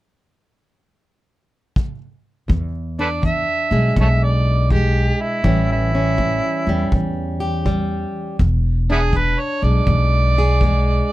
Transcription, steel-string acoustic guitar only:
2.48 3.18 E2 medium
2.99 5.41 D4 medium
3.22 3.91 E2 medium
3.72 4.70 G#3 medium
3.96 4.65 E2 medium
4.71 5.40 E2 medium
4.71 5.42 G#3 medium
5.44 6.13 A2 medium
5.44 8.93 E3 medium
5.44 6.67 G3 medium
5.44 5.94 C#4 medium
5.95 8.37 C#4 soft
6.18 6.87 A2 medium
6.69 7.65 G3 medium
6.92 7.61 A2 medium
7.40 8.36 G4 medium
7.65 8.34 A2 medium
7.65 8.39 G3 medium
8.41 9.09 E2 medium
8.90 11.12 D4 medium
9.14 9.82 E2 medium
9.64 10.61 G#3 medium
9.88 10.56 E2 medium
10.38 11.12 G#4 medium
10.62 11.12 E2 medium
10.62 11.12 G#3 medium

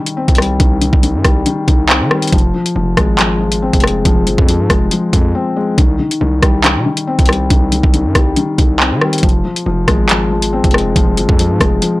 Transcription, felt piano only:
0.00 0.60 D#3 medium
0.00 0.37 G3 medium
0.17 1.25 C4 medium
0.38 1.23 G3 medium
0.60 0.80 D#3 medium
0.82 1.02 D#3 medium
1.03 1.45 D#3 medium
1.25 2.10 G3 medium
1.46 1.66 D#3 loud
1.68 2.33 D#3 medium
1.89 2.33 C4 medium
2.11 2.33 G3 medium
2.33 2.53 F3 medium
2.54 2.74 F3 medium
2.76 3.18 F3 medium
2.97 3.82 G#3 medium
3.19 3.39 F3 loud
3.41 4.04 F3 medium
3.62 4.70 C4 medium
3.84 4.69 G#3 medium
4.05 4.25 F3 loud
4.27 4.47 F3 medium
4.49 4.90 F3 medium
4.70 5.55 G#3 medium
4.92 5.12 F3 medium
5.13 5.78 F3 medium
5.35 5.78 C4 medium
5.56 5.78 G#3 medium
5.78 5.98 D#3 medium
5.99 6.20 D#3 medium
6.21 6.63 D#3 medium
6.43 7.27 G3 medium
6.64 6.84 D#3 medium
6.86 7.49 D#3 medium
7.07 8.15 C4 medium
7.29 8.14 G3 medium
7.51 7.71 D#3 medium
7.72 7.92 D#3 medium
7.94 8.35 D#3 medium
8.15 9.00 G3 medium
8.37 8.57 D#3 loud
8.59 9.23 D#3 medium
8.80 9.23 C4 medium
9.02 9.23 G3 medium
9.23 9.43 F3 medium
9.45 9.65 F3 medium
9.66 10.08 F3 medium
9.88 10.73 G#3 medium
10.10 10.29 F3 loud
10.31 10.95 F3 medium
10.53 11.61 C4 medium
10.74 11.59 G#3 medium
10.96 11.16 F3 loud
11.17 11.38 F3 medium
11.39 11.81 F3 medium
11.61 12.00 G#3 medium
11.82 12.00 F3 medium

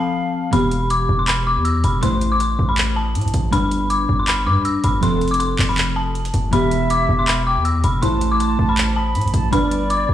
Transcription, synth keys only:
0.00 0.49 F3 medium
0.00 0.50 C4 medium
0.00 0.50 A4 medium
0.51 1.99 E3 medium
0.51 2.00 B3 medium
0.51 2.01 G4 medium
2.01 3.49 A3 medium
2.01 3.50 E4 medium
2.01 3.51 C5 medium
3.51 4.44 G3 medium
3.51 4.45 D4 medium
3.51 4.45 B4 medium
4.46 5.02 G3 medium
4.46 5.03 D4 soft
4.46 5.03 B4 medium
5.01 6.49 F3 medium
5.01 6.50 C4 medium
5.01 6.50 A4 medium
6.51 7.99 E3 medium
6.51 8.00 B3 medium
6.51 8.01 G4 medium
8.01 9.49 A3 medium
8.01 9.50 E4 medium
8.01 9.50 C5 medium
9.51 10.14 G3 medium
9.51 10.14 D4 medium
9.51 10.14 B4 medium

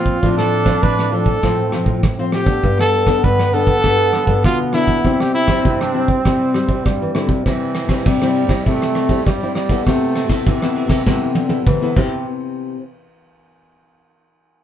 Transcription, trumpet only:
0.00 0.37 F4 loud
0.38 0.84 A4 loud
0.82 1.12 B4 loud
1.12 2.02 A4 loud
2.34 2.76 G4 loud
2.80 3.25 A4 loud
3.24 3.55 B4 loud
3.54 4.44 A4 loud
4.45 4.59 F4 loud
4.74 5.22 E4 loud
5.20 5.33 G4 medium
5.34 5.82 E4 loud
5.81 6.10 D4 medium
6.09 7.15 C4 medium

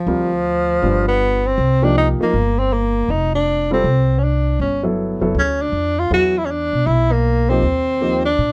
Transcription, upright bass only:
0.07 0.78 D2 medium
0.82 1.54 G1 medium
1.58 2.16 C2 medium
2.20 muted upright bass stroke soft
2.33 3.05 G1 medium
3.09 3.80 F1 medium
3.84 4.56 C2 medium
4.59 5.18 G1 medium
5.21 5.34 F#1 medium
5.35 5.70 D2 medium
5.72 6.08 F2 medium
6.11 6.69 E2 medium
6.73 6.86 B2 medium
6.86 7.58 B1 medium
7.62 8.34 D#2 medium
8.38 8.52 A#2 medium

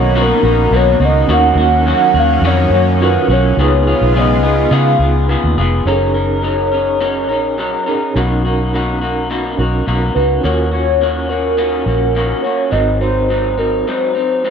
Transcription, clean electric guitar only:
0.00 0.14 A#3 soft
0.00 0.15 D#4 medium
0.00 0.14 F#4 medium
0.15 0.43 B2 medium
0.15 0.44 A#3 medium
0.15 0.44 D#4 medium
0.15 0.42 F#4 loud
0.43 0.72 A#3 soft
0.43 0.73 D#4 medium
0.43 0.72 F#4 medium
0.72 1.01 B2 medium
0.72 1.01 A#3 medium
0.72 1.00 D#4 medium
0.72 0.99 F#4 medium
1.00 1.28 A#3 soft
1.00 1.29 D#4 soft
1.00 1.28 F#4 medium
1.29 1.57 D#3 medium
1.29 1.57 A#3 medium
1.29 1.58 C#4 medium
1.29 1.56 F#4 medium
1.57 1.85 A#3 medium
1.57 1.86 C#4 medium
1.57 1.86 F#4 medium
1.86 2.15 D#3 medium
1.86 2.15 A#3 medium
1.86 2.14 C#4 medium
1.86 2.13 F#4 medium
2.15 2.43 A#3 soft
2.15 2.43 C#4 soft
2.15 2.43 F#4 medium
2.44 2.72 D#3 medium
2.44 2.73 A#3 medium
2.44 2.72 C#4 medium
2.44 2.71 F#4 medium
2.72 3.00 A#3 medium
2.72 3.01 C#4 medium
2.72 3.01 F#4 medium
3.01 3.29 D#3 medium
3.01 3.30 A#3 medium
3.01 3.30 C#4 medium
3.01 3.28 F#4 medium
3.30 3.59 A#3 soft
3.30 3.59 C#4 medium
3.30 3.58 F#4 medium
3.59 3.87 C#3 medium
3.59 3.87 B3 medium
3.59 3.86 F4 medium
3.59 3.86 G#4 medium
3.87 4.15 B3 medium
3.87 4.15 F4 medium
3.87 4.15 G#4 medium
4.14 4.43 C#3 medium
4.14 4.44 B3 medium
4.14 4.43 F4 medium
4.14 4.42 G#4 medium
4.43 4.70 B3 soft
4.43 4.71 F4 medium
4.43 4.71 G#4 medium
4.71 5.00 C#3 medium
4.71 5.00 B3 medium
4.71 5.00 F4 medium
4.71 4.99 G#4 loud
5.00 5.28 B3 soft
5.00 5.29 F4 soft
5.00 5.29 G#4 medium
5.29 5.58 C#3 medium
5.29 5.58 B3 medium
5.29 5.58 F4 medium
5.29 5.57 G#4 medium
5.58 5.87 B3 medium
5.58 5.87 F4 medium
5.58 5.86 G#4 medium
5.86 6.15 F#3 medium
5.86 6.15 C#4 medium
5.86 6.14 D#4 medium
5.86 6.13 A#4 medium
6.14 6.42 C#4 soft
6.14 6.43 D#4 soft
6.14 6.43 A#4 medium
6.42 6.71 F#3 medium
6.42 6.72 C#4 medium
6.42 6.72 D#4 medium
6.42 6.70 A#4 medium
6.72 6.99 C#4 soft
6.72 7.00 D#4 soft
6.72 7.00 A#4 soft
7.00 7.29 F#3 medium
7.00 7.29 C#4 medium
7.00 7.29 D#4 medium
7.00 7.28 A#4 medium
7.29 7.58 C#4 soft
7.29 7.58 D#4 medium
7.29 7.58 A#4 soft
7.58 7.86 F#3 medium
7.58 7.87 C#4 medium
7.58 7.86 D#4 medium
7.58 7.85 A#4 medium
7.86 8.16 C#4 medium
7.86 8.16 D#4 medium
7.86 8.15 A#4 medium
8.16 8.44 B2 medium
8.16 8.44 A#3 medium
8.16 8.44 D#4 medium
8.16 8.43 F#4 medium
8.45 8.73 A#3 medium
8.45 8.73 D#4 soft
8.45 8.73 F#4 medium
8.73 9.01 B2 medium
8.73 9.02 A#3 medium
8.73 9.01 D#4 medium
8.73 9.00 F#4 medium
9.01 9.29 A#3 soft
9.01 9.29 D#4 medium
9.01 9.30 F#4 medium
9.30 9.58 B2 medium
9.30 9.58 A#3 medium
9.30 9.59 D#4 medium
9.30 9.58 F#4 medium
9.59 9.86 A#3 soft
9.59 9.87 D#4 medium
9.59 9.87 F#4 medium
9.87 10.15 B2 medium
9.87 10.16 A#3 medium
9.87 10.15 D#4 medium
9.87 10.14 F#4 medium
10.16 10.43 A#3 soft
10.16 10.44 D#4 soft
10.16 10.44 F#4 soft
10.43 10.72 D#3 medium
10.43 10.72 A#3 medium
10.43 10.72 C#4 medium
10.43 10.70 F#4 medium
10.71 11.00 A#3 soft
10.71 11.01 C#4 soft
10.71 11.00 F#4 soft
11.01 11.29 D#3 soft
11.01 11.30 A#3 medium
11.01 11.29 C#4 medium
11.01 11.28 F#4 medium
11.29 11.57 A#3 soft
11.29 11.57 C#4 soft
11.29 11.58 F#4 soft
11.57 11.86 D#3 medium
11.57 11.87 A#3 medium
11.57 11.87 C#4 medium
11.57 11.85 F#4 medium
11.86 12.15 A#3 soft
11.86 12.16 C#4 soft
11.86 12.15 F#4 soft
12.15 12.44 D#3 medium
12.15 12.44 A#3 medium
12.15 12.44 C#4 medium
12.15 12.43 F#4 medium
12.44 12.72 A#3 soft
12.44 12.72 C#4 soft
12.44 12.72 F#4 medium
12.71 13.00 G#2 medium
12.71 13.01 F#3 medium
12.71 13.01 C4 medium
12.71 13.00 D#4 medium
13.01 13.29 F#3 soft
13.01 13.29 C4 medium
13.01 13.29 D#4 medium
13.29 13.58 G#2 medium
13.29 13.58 F#3 medium
13.29 13.58 C4 medium
13.29 13.56 D#4 medium
13.58 13.86 F#3 soft
13.58 13.87 C4 soft
13.58 13.86 D#4 medium
13.87 14.16 G#2 medium
13.87 14.16 F#3 medium
13.87 14.15 C4 medium
13.87 14.14 D#4 medium
14.15 14.43 F#3 soft
14.15 14.44 C4 soft
14.15 14.44 D#4 soft
14.43 14.50 G#2 medium
14.43 14.50 F#3 medium
14.43 14.50 C4 medium
14.43 14.50 D#4 medium

